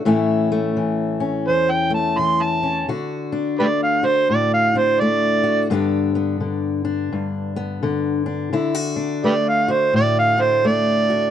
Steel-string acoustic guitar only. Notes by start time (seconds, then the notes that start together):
0.05 A2 E3 A3 C#4 E4
0.52 A3
0.77 E3
1.20 C#4
1.48 E2
1.90 A3
2.19 E3
2.63 C#4
2.89 D3 F#4
3.32 D4
3.60 A3
4.03 F#4
4.30 A2
4.75 D4
5.01 A3
5.44 F#4
5.70 G2 D3 B3 D4 G4
6.15 B3
6.41 D3
6.85 D4
7.12 G2
7.56 B3
7.83 D3
8.26 D4
8.53 D3 E4
8.75 F#4
8.96 D4
9.24 A3
9.68 F#4
9.93 A2
10.38 D4
10.64 A3
11.10 F#4